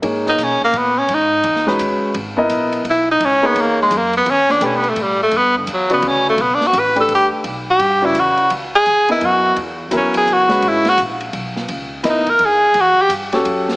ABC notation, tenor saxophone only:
X:1
M:3/4
L:1/8
Q:"Swing" 1/4=170
K:C#dor
V:1 name="Tenor saxophone"
z D C A, B, C | D4 z2 | z4 E D | C B, A, G, A, B, |
C =D (3C B, =A, =G, A, | B, =D, F, B, C =A, | (3B, =D F B =A =G z | z =G2 E F2 |
z G2 E F2 | z2 C G F2 | E F z4 | z2 D A G2 |
F =G z4 |]